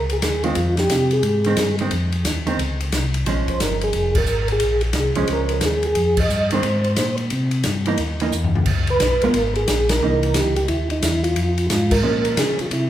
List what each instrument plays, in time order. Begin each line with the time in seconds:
Already playing: tonewheel organ C#2 A#4
0.10 tonewheel organ G#4, ride
0.22 tonewheel organ D#2 G#4, snare, hi-hat pedal, ride
0.43 hollow-body jazz guitar D#3 G#3 C4, tonewheel organ F4, ride
0.55 tonewheel organ F2, ride
0.77 tonewheel organ G4, snare, ride
0.90 tonewheel organ C3, snare, hi-hat pedal, ride
1.11 tonewheel organ G#4, ride
1.23 tonewheel organ G#2, ride
1.44 hollow-body jazz guitar D#3 G#3 C4, ride
1.57 tonewheel organ G2, snare, hi-hat pedal, ride
1.79 hollow-body jazz guitar D#3 G#3 C4, ride
1.91 tonewheel organ F2, ride
2.12 ride
2.25 tonewheel organ D#2, snare, hi-hat pedal, ride
2.47 hollow-body jazz guitar D#3 G#3 C4, ride
2.59 tonewheel organ C#2, ride
2.80 ride
2.92 tonewheel organ C2, snare, hi-hat pedal, ride
3.14 ride
3.26 tonewheel organ A#1, hollow-body jazz guitar F3 G#3 C#4, ride
3.48 tonewheel organ A#1 C5, kick, ride
3.60 tonewheel organ G1 A#4, snare, hi-hat pedal, ride
3.81 tonewheel organ G#4, ride
3.93 tonewheel organ F1, ride
4.15 tonewheel organ A#4, kick, crash
4.26 tonewheel organ G#1, hi-hat pedal
4.48 ride
4.52 tonewheel organ G#4
4.60 tonewheel organ A#1, ride
4.81 ride
4.93 tonewheel organ C2, snare, hi-hat pedal, ride
5.00 tonewheel organ G#4
5.15 tonewheel organ C2, hollow-body jazz guitar F3 G#3 C#4, ride
5.27 tonewheel organ C#2, ride
5.33 tonewheel organ A#4
5.49 ride
5.54 tonewheel organ A#4
5.61 tonewheel organ D#2, snare, hi-hat pedal, ride
5.66 tonewheel organ G#4
5.83 ride
5.87 tonewheel organ G#4
5.95 tonewheel organ F2, ride
6.17 tonewheel organ D#5, kick, crash
6.30 tonewheel organ G2, hi-hat pedal
6.50 hollow-body jazz guitar D#3 G#3 C4, tonewheel organ C5, ride
6.63 tonewheel organ G#2, ride
6.84 ride
6.96 tonewheel organ A#2, snare, hi-hat pedal, ride
7.17 ride
7.30 tonewheel organ C3, ride
7.51 ride
7.63 tonewheel organ G2, snare, hi-hat pedal, ride
7.86 hollow-body jazz guitar E3 A#3 D#4, ride
7.98 tonewheel organ D#2, ride
8.20 hollow-body jazz guitar E3 A#3 D#4, ride
8.32 tonewheel organ E2, hi-hat pedal
8.44 floor tom
8.55 floor tom
8.66 tonewheel organ C#2, kick, crash
8.87 tonewheel organ B4, ride
9.00 tonewheel organ B1, snare, hi-hat pedal, ride
9.21 tonewheel organ B1 A#4, hollow-body jazz guitar G#3 B3 F4, ride
9.34 tonewheel organ G#1, ride
9.55 tonewheel organ G#4, ride
9.68 tonewheel organ A#1 G#4, snare, hi-hat pedal, ride
9.89 tonewheel organ A#4, snare, ride
10.02 tonewheel organ C2, hollow-body jazz guitar E3 A#3 D#4
10.23 ride
10.34 tonewheel organ C#2 G4, snare, hi-hat pedal, ride
10.56 tonewheel organ G4, ride
10.68 tonewheel organ D#2 E4, ride
10.90 tonewheel organ D#4, ride
11.02 tonewheel organ E2 E4, snare, hi-hat pedal, ride
11.23 tonewheel organ F4, ride
11.36 tonewheel organ F2, ride
11.58 ride
11.70 tonewheel organ G#2 F4, snare, hi-hat pedal, ride
11.91 tonewheel organ A#4, kick, crash
12.03 tonewheel organ A#2, hollow-body jazz guitar F3 G#3 C#4
12.25 ride
12.37 tonewheel organ C#3 G#4, snare, hi-hat pedal, ride
12.59 tonewheel organ C#3 F4, ride
12.71 tonewheel organ C3 E4, ride